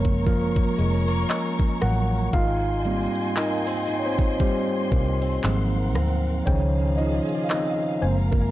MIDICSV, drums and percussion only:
0, 0, Header, 1, 2, 480
1, 0, Start_track
1, 0, Key_signature, -4, "major"
1, 0, Tempo, 1034483
1, 1082, Time_signature, 4, 2, 24, 8
1, 3950, End_track
2, 0, Start_track
2, 0, Title_t, "Drums"
2, 22, Note_on_c, 9, 36, 88
2, 69, Note_off_c, 9, 36, 0
2, 122, Note_on_c, 9, 36, 90
2, 126, Note_on_c, 9, 42, 74
2, 168, Note_off_c, 9, 36, 0
2, 172, Note_off_c, 9, 42, 0
2, 261, Note_on_c, 9, 36, 95
2, 307, Note_off_c, 9, 36, 0
2, 364, Note_on_c, 9, 42, 68
2, 411, Note_off_c, 9, 42, 0
2, 602, Note_on_c, 9, 42, 62
2, 603, Note_on_c, 9, 39, 120
2, 648, Note_off_c, 9, 42, 0
2, 649, Note_off_c, 9, 39, 0
2, 739, Note_on_c, 9, 36, 92
2, 786, Note_off_c, 9, 36, 0
2, 841, Note_on_c, 9, 42, 67
2, 843, Note_on_c, 9, 37, 87
2, 887, Note_off_c, 9, 42, 0
2, 889, Note_off_c, 9, 37, 0
2, 1082, Note_on_c, 9, 36, 119
2, 1082, Note_on_c, 9, 42, 73
2, 1128, Note_off_c, 9, 42, 0
2, 1129, Note_off_c, 9, 36, 0
2, 1323, Note_on_c, 9, 42, 43
2, 1369, Note_off_c, 9, 42, 0
2, 1462, Note_on_c, 9, 42, 68
2, 1509, Note_off_c, 9, 42, 0
2, 1561, Note_on_c, 9, 39, 115
2, 1562, Note_on_c, 9, 42, 75
2, 1608, Note_off_c, 9, 39, 0
2, 1609, Note_off_c, 9, 42, 0
2, 1803, Note_on_c, 9, 42, 66
2, 1849, Note_off_c, 9, 42, 0
2, 1942, Note_on_c, 9, 36, 92
2, 1989, Note_off_c, 9, 36, 0
2, 2042, Note_on_c, 9, 36, 93
2, 2045, Note_on_c, 9, 42, 68
2, 2088, Note_off_c, 9, 36, 0
2, 2092, Note_off_c, 9, 42, 0
2, 2282, Note_on_c, 9, 36, 99
2, 2284, Note_on_c, 9, 42, 69
2, 2328, Note_off_c, 9, 36, 0
2, 2330, Note_off_c, 9, 42, 0
2, 2522, Note_on_c, 9, 42, 64
2, 2523, Note_on_c, 9, 39, 114
2, 2569, Note_off_c, 9, 39, 0
2, 2569, Note_off_c, 9, 42, 0
2, 2761, Note_on_c, 9, 42, 68
2, 2763, Note_on_c, 9, 37, 93
2, 2807, Note_off_c, 9, 42, 0
2, 2809, Note_off_c, 9, 37, 0
2, 3002, Note_on_c, 9, 36, 119
2, 3002, Note_on_c, 9, 42, 69
2, 3048, Note_off_c, 9, 42, 0
2, 3049, Note_off_c, 9, 36, 0
2, 3242, Note_on_c, 9, 42, 42
2, 3289, Note_off_c, 9, 42, 0
2, 3382, Note_on_c, 9, 42, 70
2, 3429, Note_off_c, 9, 42, 0
2, 3481, Note_on_c, 9, 39, 113
2, 3482, Note_on_c, 9, 42, 77
2, 3527, Note_off_c, 9, 39, 0
2, 3528, Note_off_c, 9, 42, 0
2, 3722, Note_on_c, 9, 42, 65
2, 3768, Note_off_c, 9, 42, 0
2, 3862, Note_on_c, 9, 36, 92
2, 3909, Note_off_c, 9, 36, 0
2, 3950, End_track
0, 0, End_of_file